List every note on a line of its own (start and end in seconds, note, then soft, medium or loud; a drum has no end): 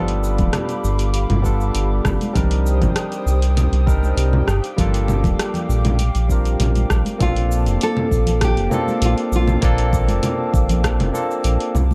0.00 0.40 G1 medium
0.00 1.40 G3 medium
0.00 1.40 B3 medium
0.00 1.41 D4 medium
0.00 1.41 F4 medium
0.00 7.16 G4 medium
0.00 1.42 A4 loud
0.00 2.33 F5 medium
0.00 2.33 B5 medium
0.00 2.33 D6 loud
0.08 open hi-hat soft
0.24 cabasa medium
0.38 0.51 D1 loud
0.38 kick loud
0.38 open hi-hat soft
0.38 high conga medium
0.38 low conga medium
0.38 cabasa soft
0.53 cross-stick medium
0.53 open hi-hat medium
0.53 low conga medium
0.53 cabasa soft
0.69 open hi-hat soft
0.69 cabasa soft
0.84 1.26 G1 medium
0.84 cabasa medium
0.99 open hi-hat soft
0.99 cabasa soft
1.14 open hi-hat medium
1.14 cabasa soft
1.30 1.71 G1 medium
1.30 open hi-hat soft
1.30 low conga medium
1.42 2.31 G3 medium
1.42 2.31 B3 medium
1.42 2.31 D4 medium
1.42 2.32 F4 medium
1.42 2.32 A4 medium
1.42 kick medium
1.42 cabasa medium
1.61 cabasa soft
1.75 2.00 G1 loud
1.75 open hi-hat medium
1.75 cabasa soft
2.05 2.18 G1 medium
2.05 kick medium
2.05 cross-stick medium
2.05 low conga medium
2.05 cabasa medium
2.21 open hi-hat soft
2.21 high conga medium
2.21 cabasa soft
2.33 2.83 C2 medium
2.33 3.82 G3 medium
2.33 3.83 C4 medium
2.33 3.83 D4 medium
2.33 3.84 D#4 medium
2.33 3.84 A#4 medium
2.33 4.45 C5 medium
2.33 7.16 G5 medium
2.33 4.45 D#6 medium
2.33 kick loud
2.33 open hi-hat medium
2.33 low conga medium
2.33 cabasa soft
2.51 open hi-hat soft
2.66 cabasa medium
2.82 2.94 G1 loud
2.82 kick loud
2.82 open hi-hat soft
2.82 low conga medium
2.82 cabasa soft
2.96 cross-stick medium
2.96 open hi-hat medium
2.96 cabasa soft
3.12 open hi-hat soft
3.12 cabasa soft
3.26 3.68 C2 medium
3.26 cabasa medium
3.42 open hi-hat soft
3.42 cabasa soft
3.57 open hi-hat medium
3.57 low conga medium
3.57 cabasa soft
3.72 4.13 C2 medium
3.72 open hi-hat soft
3.86 4.45 G3 medium
3.86 4.46 C4 medium
3.86 4.46 D4 medium
3.86 4.46 D#4 medium
3.86 4.46 A#4 medium
3.86 kick loud
3.86 cabasa medium
4.03 high conga medium
4.03 cabasa soft
4.17 4.43 C2 loud
4.17 open hi-hat medium
4.17 cabasa soft
4.33 low conga medium
4.47 4.61 G1 medium
4.47 7.18 F5 medium
4.47 7.17 D6 medium
4.47 cross-stick medium
4.47 cabasa medium
4.64 open hi-hat soft
4.64 cabasa soft
4.77 5.25 G1 loud
4.77 5.97 G3 medium
4.77 5.97 A#3 medium
4.77 5.98 D4 medium
4.77 5.98 F4 medium
4.77 5.99 A4 loud
4.77 kick loud
4.77 open hi-hat medium
4.77 low conga medium
4.77 cabasa soft
4.94 open hi-hat soft
4.94 cabasa soft
5.08 low conga medium
5.08 cabasa medium
5.24 5.36 D1 loud
5.24 kick loud
5.24 open hi-hat soft
5.24 high conga medium
5.24 low conga medium
5.24 cabasa soft
5.39 cross-stick medium
5.39 open hi-hat medium
5.39 cabasa soft
5.54 open hi-hat soft
5.54 low conga medium
5.54 cabasa soft
5.69 6.11 A#1 medium
5.69 cabasa medium
5.84 open hi-hat soft
5.84 high conga medium
5.84 low conga medium
5.84 cabasa soft
5.99 open hi-hat medium
5.99 cabasa soft
6.15 6.56 A#1 medium
6.15 open hi-hat soft
6.15 cabasa soft
6.28 7.16 G3 medium
6.28 7.16 C4 medium
6.28 7.17 D4 medium
6.28 7.18 F4 medium
6.28 7.18 A#4 medium
6.28 kick medium
6.28 cabasa medium
6.45 open hi-hat soft
6.45 cabasa soft
6.60 6.85 A#1 medium
6.60 open hi-hat medium
6.60 low conga medium
6.60 cabasa soft
6.75 open hi-hat soft
6.75 high conga medium
6.75 cabasa soft
6.90 7.03 A#1 loud
6.90 kick medium
6.90 cross-stick medium
6.90 cabasa medium
7.05 open hi-hat soft
7.05 high conga medium
7.05 cabasa soft
7.18 7.68 A#1 loud
7.18 8.67 A#3 medium
7.18 11.71 A#3 medium
7.18 8.68 C4 medium
7.18 8.68 D4 medium
7.18 8.69 F4 medium
7.18 11.71 F5 medium
7.18 11.71 A5 medium
7.18 11.71 D6 medium
7.18 kick loud
7.18 open hi-hat medium
7.18 low conga medium
7.18 cabasa soft
7.22 7.83 F4 loud
7.22 8.69 A4 medium
7.36 open hi-hat soft
7.52 cabasa medium
7.66 7.78 F1 loud
7.66 open hi-hat soft
7.66 cabasa soft
7.81 8.44 A4 loud
7.81 open hi-hat medium
7.81 cabasa soft
7.97 low conga medium
8.11 8.59 A#1 medium
8.11 kick medium
8.11 cabasa medium
8.27 open hi-hat soft
8.27 low conga medium
8.27 cabasa soft
8.41 9.05 G4 loud
8.41 kick loud
8.41 cross-stick medium
8.41 open hi-hat medium
8.41 cabasa soft
8.57 8.69 F1 loud
8.57 open hi-hat soft
8.70 9.58 A#3 medium
8.70 9.59 C4 medium
8.70 9.59 D4 medium
8.70 9.60 F4 medium
8.70 low conga medium
8.70 cabasa medium
8.74 9.60 A4 loud
8.88 high conga medium
8.88 cabasa soft
9.02 9.15 A#1 medium
9.02 9.13 F4 medium
9.02 open hi-hat medium
9.02 cabasa soft
9.18 open hi-hat soft
9.32 9.58 A#1 medium
9.32 9.91 F4 medium
9.32 cabasa medium
9.48 low conga medium
9.48 cabasa soft
9.61 10.10 A#1 loud
9.61 11.10 A#3 loud
9.61 11.10 C4 medium
9.61 11.11 D4 medium
9.61 11.11 F4 medium
9.61 11.12 A4 loud
9.61 kick loud
9.61 open hi-hat medium
9.61 cabasa soft
9.78 open hi-hat soft
9.93 kick loud
9.93 cabasa medium
10.08 10.21 F1 loud
10.08 open hi-hat soft
10.08 high conga medium
10.08 cabasa soft
10.23 open hi-hat medium
10.23 low conga medium
10.23 cabasa soft
10.54 11.01 A#1 medium
10.54 kick loud
10.54 cabasa medium
10.69 open hi-hat soft
10.69 low conga medium
10.69 cabasa soft
10.84 kick medium
10.84 cross-stick medium
10.84 open hi-hat medium
10.84 cabasa soft
10.99 11.12 F1 loud
10.99 open hi-hat soft
10.99 low conga medium
11.13 11.72 A#3 medium
11.13 11.73 C4 medium
11.13 11.73 D4 medium
11.13 11.73 F4 medium
11.13 11.73 A4 medium
11.13 cabasa medium
11.31 cabasa soft
11.44 11.58 A#1 medium
11.44 open hi-hat medium
11.44 cabasa soft
11.60 open hi-hat soft
11.74 11.94 C2 medium
11.74 11.94 C5 medium
11.74 11.94 A#5 medium
11.74 11.94 D6 medium
11.74 low conga medium
11.74 cabasa medium
11.91 high conga medium